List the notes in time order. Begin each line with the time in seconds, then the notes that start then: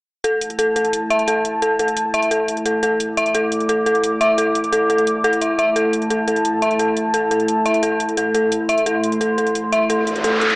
0.24 A3 E4 A4 A5, closed hi-hat
0.41 closed hi-hat
0.50 closed hi-hat
0.59 A4, closed hi-hat
0.76 A4, closed hi-hat
0.85 closed hi-hat
0.93 closed hi-hat
1.10 E5, closed hi-hat
1.19 closed hi-hat
1.28 A4, closed hi-hat
1.45 closed hi-hat
1.62 A4, closed hi-hat
1.79 A4, closed hi-hat
1.88 closed hi-hat
1.97 closed hi-hat
2.14 E5, closed hi-hat
2.23 closed hi-hat
2.31 A4, closed hi-hat
2.48 closed hi-hat
2.57 closed hi-hat
2.66 A4, closed hi-hat
2.83 A4, closed hi-hat
3.00 D6, closed hi-hat
3.17 E5, closed hi-hat
3.26 closed hi-hat
3.35 A4, closed hi-hat
3.52 closed hi-hat
3.60 closed hi-hat
3.69 A4, closed hi-hat
3.86 A4, closed hi-hat
3.95 closed hi-hat
4.04 closed hi-hat
4.21 E5, closed hi-hat
4.38 A4, closed hi-hat
4.55 closed hi-hat
4.64 closed hi-hat
4.72 A4, closed hi-hat
4.90 A4, closed hi-hat
4.98 closed hi-hat
5.07 closed hi-hat
5.24 A4, closed hi-hat
5.33 closed hi-hat
5.41 E5, closed hi-hat
5.59 E5, closed hi-hat
5.76 A4 A5, closed hi-hat
5.93 closed hi-hat
6.02 closed hi-hat
6.10 A4, closed hi-hat
6.28 A4, closed hi-hat
6.36 closed hi-hat
6.45 closed hi-hat
6.62 E5, closed hi-hat
6.71 closed hi-hat
6.79 A4, closed hi-hat
6.97 closed hi-hat
7.14 A4, closed hi-hat
7.31 A4, closed hi-hat
7.40 closed hi-hat
7.48 closed hi-hat
7.66 E5, closed hi-hat
7.74 closed hi-hat
7.83 A4, closed hi-hat
8.00 closed hi-hat
8.09 closed hi-hat
8.17 A4, closed hi-hat
8.35 A4, closed hi-hat
8.52 C6, closed hi-hat
8.69 E5, closed hi-hat
8.78 closed hi-hat
8.86 A4, closed hi-hat
9.04 closed hi-hat
9.12 closed hi-hat
9.21 A4, closed hi-hat
9.38 A4, closed hi-hat
9.47 closed hi-hat
9.55 closed hi-hat
9.72 E5, closed hi-hat
9.90 A4, closed hi-hat, noise sweep
10.07 closed hi-hat
10.16 closed hi-hat
10.24 A4, closed hi-hat
10.41 A4, closed hi-hat
10.50 closed hi-hat